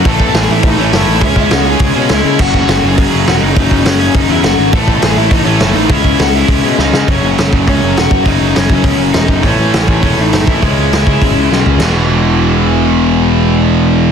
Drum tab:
CC |--------|--------|x-------|--------|
HH |o---o-o-|o-o-o-o-|--o-o-o-|o-o-o-o-|
SD |--o---o-|--o---o-|--o---o-|--o---o-|
FT |--------|--------|--------|--------|
BD |oo--o---|oo--o---|oo--o---|oo--o---|

CC |--------|--------|--------|--------|
HH |o-o-o-o-|o-o-o---|o-o-o-o-|o-o-o-o-|
SD |--o---o-|--o---oo|--o---o-|--o---o-|
FT |--------|--------|--------|--------|
BD |oo--o---|oo--o---|o--oo--o|o--oo--o|

CC |--------|--------|x-------|--------|
HH |o-o-o-o-|o-o-o---|--------|--------|
SD |--o---o-|--o---o-|o-------|--------|
FT |--------|-------o|--------|--------|
BD |o--oo--o|o--oo---|--------|--------|